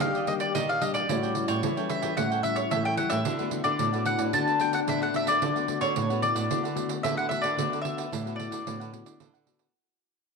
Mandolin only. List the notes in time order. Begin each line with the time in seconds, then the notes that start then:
0.01 F5
0.28 D#5
0.40 D5
0.55 D#5
0.69 F5
0.82 D#5
0.94 D5
1.48 C#5
1.90 E5
2.17 F#5
2.43 E5
2.56 C#5
2.71 E5
2.85 G5
2.97 F#5
3.10 E5
3.64 D5
4.06 F#5
4.34 A5
4.61 G5
4.74 F#5
4.89 E5
5.03 F#5
5.16 E5
5.28 D5
5.81 C#5
6.22 D5
7.03 E5
7.17 F#5
7.29 E5
7.42 D5
7.82 E5
8.36 D5